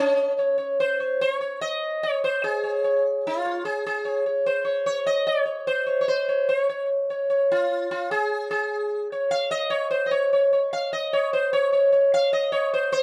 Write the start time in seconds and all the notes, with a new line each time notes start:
Already playing: C#4 C#5
0.39 C#5
0.58 C#5
0.80 C5
1.00 C#5
1.21 C5
1.41 C#5
1.61 D#5
2.03 C#5
2.24 C5
2.44 G#4
2.64 C#5
2.84 C#5
3.27 F4
3.45 C#5
3.65 G#4
3.87 G#4
4.05 C#5
4.26 C#5
4.46 C5
4.65 C#5
4.86 C#5
5.07 D#5
5.27 C#5
5.46 C#5
5.67 C5
5.87 C#5
6.01 C#5
6.08 C5
6.29 C#5
6.49 C#5
6.69 C#5
7.10 C#5
7.30 C#5
7.52 F4
7.91 F4
8.11 G#4
8.51 G#4
9.12 C#5
9.31 F5
9.51 D#5
9.70 C#5
9.91 C5
10.06 D#5
10.11 C#5
10.33 C#5
10.53 C#5
10.73 F5
10.93 D#5
11.13 C#5
11.33 C5
11.53 C#5
11.73 C#5
11.92 C#5
12.14 F5
12.33 D#5
12.52 C#5
12.74 C5
12.92 C#5